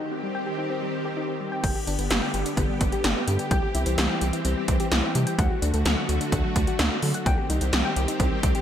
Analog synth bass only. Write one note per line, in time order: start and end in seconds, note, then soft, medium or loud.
1.64 1.74 G1 loud
1.87 1.97 G1 loud
1.99 2.09 G1 medium
2.11 2.21 G1 loud
2.34 2.44 G1 loud
2.57 2.67 G1 loud
2.81 2.91 G1 loud
3.04 3.14 G1 loud
3.28 3.38 G2 loud
3.51 3.61 C2 loud
3.75 3.85 C2 medium
3.86 3.96 C2 medium
3.98 4.08 C2 loud
4.22 4.32 C2 medium
4.45 4.55 C2 loud
4.68 4.78 C2 medium
4.92 5.02 C2 loud
5.15 5.25 C3 loud
5.39 5.49 D2 loud
5.62 5.72 D2 loud
5.74 5.84 D2 loud
5.85 5.96 D2 loud
6.09 6.19 D2 loud
6.32 6.42 D2 loud
6.56 6.66 D2 medium
6.79 6.89 D2 loud
7.03 7.13 D3 loud
7.26 7.36 C2 loud
7.50 7.60 C2 loud
7.61 7.71 C2 loud
7.73 7.83 C2 loud
7.96 8.06 C2 loud
8.20 8.30 C2 loud
8.43 8.53 C2 loud